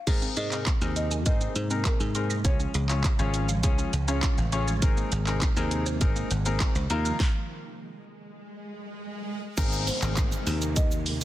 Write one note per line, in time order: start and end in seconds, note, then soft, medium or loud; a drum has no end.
0.00 0.33 F5 loud
0.07 0.28 G#2 loud
0.07 2.42 C3 medium
0.07 6.86 G#3 medium
0.07 0.18 G#3 medium
0.07 2.42 A#3 medium
0.07 0.33 C4 medium
0.07 0.33 D#4 medium
0.07 0.33 G#4 medium
0.07 0.33 A#4 medium
0.07 kick loud
0.07 closed hi-hat medium
0.07 crash medium
0.07 shaker medium
0.22 0.33 C4 medium
0.22 shaker medium
0.37 0.68 G#2 medium
0.37 0.48 A#4 medium
0.37 0.95 D#5 medium
0.37 closed hi-hat medium
0.37 shaker medium
0.51 0.69 C4 medium
0.51 0.69 D#4 medium
0.51 0.69 G#4 medium
0.51 0.69 A#4 medium
0.51 clap medium
0.51 shaker medium
0.66 kick loud
0.66 clap loud
0.66 closed hi-hat medium
0.66 shaker medium
0.81 1.26 D#2 loud
0.81 1.08 C4 medium
0.81 1.08 D#4 medium
0.81 1.08 G#4 medium
0.81 1.08 A#4 medium
0.81 0.92 A#6 medium
0.81 shaker medium
0.96 1.25 D#5 loud
0.96 closed hi-hat medium
0.96 shaker medium
1.11 1.22 G#5 medium
1.11 shaker medium
1.26 1.47 G#2 medium
1.26 1.52 C4 medium
1.26 1.52 D#4 medium
1.26 1.52 G#4 medium
1.26 1.37 A#4 medium
1.26 1.52 C5 medium
1.26 1.57 D#5 loud
1.26 kick loud
1.26 closed hi-hat medium
1.26 shaker medium
1.41 1.52 C4 medium
1.41 shaker medium
1.56 1.87 G#2 medium
1.56 1.86 C5 medium
1.56 closed hi-hat medium
1.56 shaker medium
1.70 1.97 C4 medium
1.70 1.81 C4 medium
1.70 1.97 D#4 medium
1.70 1.97 G#4 medium
1.70 1.97 A#4 medium
1.70 shaker medium
1.85 2.41 A#4 medium
1.85 kick loud
1.85 clap loud
1.85 closed hi-hat medium
1.85 shaker medium
2.00 2.46 G#2 medium
2.00 2.11 G#5 medium
2.00 shaker medium
2.15 2.32 C4 medium
2.15 2.32 D#4 medium
2.15 2.33 G#4 medium
2.15 2.33 A#4 medium
2.15 2.26 C6 medium
2.15 closed hi-hat soft
2.15 shaker medium
2.30 2.41 A#6 medium
2.30 shaker medium
2.45 2.65 C#2 loud
2.45 4.80 C#3 medium
2.45 4.80 F3 medium
2.45 2.56 F3 loud
2.45 2.71 C#4 medium
2.45 2.71 F4 medium
2.45 2.71 G#4 medium
2.45 3.60 C#5 medium
2.45 2.71 C#5 medium
2.45 kick loud
2.45 closed hi-hat medium
2.45 shaker medium
2.60 2.71 C#4 medium
2.60 shaker medium
2.74 3.05 C#2 medium
2.74 2.85 G#4 medium
2.74 closed hi-hat medium
2.74 shaker medium
2.89 3.07 C#4 medium
2.89 3.07 F4 medium
2.89 3.07 G#4 medium
2.89 3.07 C#5 medium
2.89 clap medium
2.89 shaker medium
3.04 kick loud
3.04 clap loud
3.04 closed hi-hat medium
3.04 shaker medium
3.19 3.64 G#1 loud
3.19 3.45 C#4 medium
3.19 3.45 F4 medium
3.19 3.45 G#4 medium
3.19 3.45 C#5 loud
3.19 3.30 G#6 medium
3.19 shaker medium
3.34 closed hi-hat medium
3.34 shaker medium
3.49 3.60 F5 medium
3.49 shaker medium
3.63 3.84 C#2 medium
3.63 3.90 C#4 medium
3.63 3.90 F4 medium
3.63 3.74 G#4 medium
3.63 3.90 G#4 medium
3.63 3.90 C#5 medium
3.63 kick loud
3.63 closed hi-hat medium
3.63 shaker medium
3.78 3.89 C#4 medium
3.78 shaker medium
3.93 4.24 C#2 medium
3.93 closed hi-hat medium
3.93 shaker medium
4.08 4.34 C#4 medium
4.08 4.19 C#4 medium
4.08 4.34 F4 medium
4.08 4.34 G#4 medium
4.08 4.34 C#5 loud
4.08 shaker medium
4.23 kick loud
4.23 clap loud
4.23 closed hi-hat medium
4.23 shaker medium
4.38 4.82 A1 medium
4.38 4.49 F5 medium
4.38 shaker medium
4.52 4.70 C#4 medium
4.52 4.70 F4 medium
4.52 4.70 G#4 medium
4.52 4.70 C#5 loud
4.52 4.64 C#6 medium
4.52 closed hi-hat medium
4.52 shaker medium
4.68 4.78 G#6 medium
4.68 shaker medium
4.82 5.03 G#1 loud
4.82 4.93 C3 medium
4.82 6.88 C3 medium
4.82 6.88 A#3 medium
4.82 5.08 C4 medium
4.82 5.08 D#4 medium
4.82 5.09 G#4 medium
4.82 5.09 A#4 loud
4.82 kick loud
4.82 closed hi-hat medium
4.82 shaker medium
4.97 5.08 A#3 medium
4.97 shaker medium
5.12 5.43 G#1 loud
5.12 5.23 G#4 medium
5.12 closed hi-hat medium
5.12 shaker medium
5.27 5.44 C4 medium
5.27 5.44 D#4 medium
5.27 5.44 G#4 medium
5.27 5.45 A#4 medium
5.27 clap medium
5.27 shaker medium
5.42 kick loud
5.42 clap loud
5.42 closed hi-hat medium
5.42 shaker medium
5.56 6.03 D#2 loud
5.56 5.83 C4 medium
5.56 5.83 D#4 medium
5.56 5.83 G#4 medium
5.56 5.83 A#4 loud
5.56 5.68 G#6 medium
5.56 shaker medium
5.71 closed hi-hat medium
5.71 shaker medium
5.86 5.97 C5 medium
5.86 shaker medium
6.01 6.22 G#1 medium
6.01 6.27 C4 medium
6.01 6.27 D#4 medium
6.01 6.27 G#4 medium
6.01 6.12 G#4 medium
6.01 6.27 A#4 loud
6.01 kick loud
6.01 closed hi-hat medium
6.01 shaker medium
6.16 6.27 A#3 medium
6.16 shaker medium
6.31 6.62 G#1 medium
6.31 closed hi-hat medium
6.31 shaker medium
6.45 6.57 A#3 medium
6.45 6.72 C4 medium
6.45 6.72 D#4 medium
6.45 6.72 G#4 medium
6.45 6.72 A#4 loud
6.45 shaker medium
6.60 kick loud
6.60 clap loud
6.60 closed hi-hat medium
6.60 shaker medium
6.75 6.86 C#2 medium
6.75 6.86 C5 medium
6.75 shaker medium
6.90 7.11 D#2 loud
6.90 7.20 D#3 medium
6.90 7.20 F3 medium
6.90 7.14 A#3 medium
6.90 7.20 A#3 medium
6.90 7.14 D#4 medium
6.90 7.14 F4 medium
6.90 7.14 A#4 loud
6.90 7.01 A#5 medium
6.90 closed hi-hat medium
6.90 shaker medium
7.05 7.16 F6 medium
7.05 shaker medium
7.20 kick loud
7.20 snare medium
7.20 swell medium
9.57 9.89 G#1 loud
9.57 11.24 C3 medium
9.57 11.24 G#3 medium
9.57 11.24 A#3 loud
9.57 9.84 C4 medium
9.57 9.84 D#4 medium
9.57 9.84 G#4 medium
9.57 9.84 A#4 medium
9.57 kick loud
9.57 closed hi-hat medium
9.57 crash loud
9.57 downlifter medium
9.57 shaker medium
9.72 shaker medium
9.87 10.79 C5 medium
9.87 open hi-hat medium
9.87 shaker medium
10.02 10.33 G#1 medium
10.02 10.72 C4 medium
10.02 10.72 D#4 medium
10.02 10.72 G#4 medium
10.02 10.72 A#4 medium
10.02 clap medium
10.02 shaker soft
10.02 shaker medium
10.17 kick loud
10.17 clap loud
10.17 closed hi-hat medium
10.17 shaker medium
10.32 shaker medium
10.47 11.19 D#2 medium
10.47 open hi-hat medium
10.47 shaker medium
10.61 shaker soft
10.61 shaker medium
10.76 11.24 D#5 loud
10.76 kick loud
10.76 closed hi-hat medium
10.76 shaker medium
10.91 shaker medium
11.06 open hi-hat medium
11.06 shaker medium
11.21 shaker medium